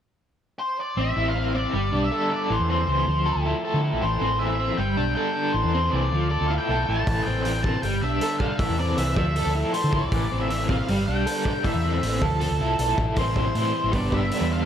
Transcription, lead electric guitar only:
0.59 0.77 C5 medium
0.80 1.00 D5 medium
1.00 1.28 E5 medium
1.29 1.55 F5 medium
1.55 1.99 D5 medium
2.04 2.32 E5 medium
2.34 2.52 D5 medium
2.52 2.69 C5 medium
2.70 3.42 C5 medium
4.02 4.42 C5 medium
4.39 4.79 E5 medium
4.77 5.14 G5 loud
5.15 5.51 G5 medium
5.52 5.89 C5 medium
5.91 6.28 D5 medium
6.29 6.48 D5 medium
6.48 6.53 F5 medium
6.58 6.84 G5 medium
6.85 7.23 A5 medium
7.23 7.42 G5 medium
7.43 7.63 G5 medium
7.63 7.82 A5 medium
7.82 8.03 G5 medium
8.01 8.38 E5 medium
8.38 8.58 F5 medium
8.58 8.79 E5 medium
8.79 8.96 D5 medium
8.97 9.15 E5 medium
9.16 9.52 E5 medium
9.73 9.93 C5 medium
9.93 10.38 D5 medium
10.41 10.69 E5 medium
10.69 11.09 F5 medium
11.06 11.66 G5 medium
11.64 12.24 E5 medium
12.22 12.94 A4 medium
13.17 13.36 C5 medium
13.37 13.96 C5 medium
13.95 14.14 D5 medium
14.14 14.52 E5 medium
14.53 14.65 F5 medium

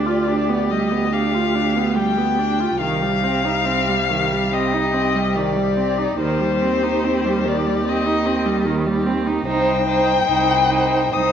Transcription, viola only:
0.06 0.29 F4 soft
0.28 0.50 D4 soft
0.49 0.72 B3 soft
0.71 0.93 G3 soft
0.92 1.12 B3 soft
1.13 1.36 D4 soft
1.34 1.57 F4 soft
1.55 1.78 D4 soft
1.76 1.98 B3 soft
1.96 2.19 G3 soft
2.18 2.41 B3 soft
2.39 2.61 D4 soft
2.60 2.81 F4 soft
2.81 3.04 D#3 soft
3.02 3.25 G3 soft
3.23 3.46 C4 soft
3.45 3.67 D#4 soft
3.66 3.90 C4 soft
3.89 4.11 G3 soft
4.10 4.34 D#3 soft
4.32 4.53 G3 soft
4.54 4.75 C4 soft
4.73 4.95 D#4 soft
4.94 5.16 C4 soft
5.15 5.37 G3 soft
5.36 5.58 D#3 soft
5.56 5.78 G3 soft
5.77 6.00 C4 soft
5.98 6.19 D#4 soft
6.20 6.42 D#3 medium
6.40 6.64 G3 soft
6.62 6.84 C4 soft
6.83 7.06 D#4 soft
7.04 7.27 C4 soft
7.26 7.46 G3 soft
7.45 7.67 D#3 soft
7.66 7.85 G3 soft
7.86 8.08 C4 medium
8.06 8.27 D#4 soft
8.26 8.47 C4 medium
8.46 8.67 G3 soft
8.65 8.88 D#3 medium
8.86 9.07 G3 soft
9.06 9.28 C4 soft
9.27 9.46 D#4 soft
9.47 9.86 D#4 medium
9.86 10.25 D#4 medium
10.26 10.69 D#4 medium
10.69 11.13 D#4 soft
11.14 11.32 D#4 medium

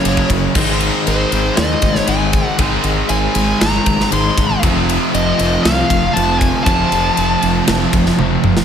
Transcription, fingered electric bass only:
0.05 0.22 F#1 medium
0.30 0.47 F#1 medium
0.55 0.89 G#1 loud
1.07 1.24 G#1 medium
1.32 1.49 G#1 medium
1.57 1.74 D#2 loud
1.82 1.99 G#1 medium
2.08 2.41 G#1 medium
2.59 2.76 G#1 medium
2.84 3.01 G#1 medium
3.09 3.26 G#1 medium
3.35 3.52 G#1 medium
3.61 3.78 G#1 loud
3.87 4.03 G#1 medium
4.12 4.29 G#1 medium
4.38 4.54 G#1 medium
4.63 4.97 F1 loud
5.14 5.31 F1 loud
5.40 5.56 F1 loud
5.65 5.81 C2 loud
5.90 6.07 F1 medium
6.17 6.50 F1 medium
6.66 6.83 F1 loud
6.92 7.09 F1 medium
7.18 7.34 F1 medium
7.43 7.59 F1 medium
7.68 7.85 F1 loud
7.94 8.10 F1 medium
8.19 8.36 F1 medium
8.44 8.61 F1 medium

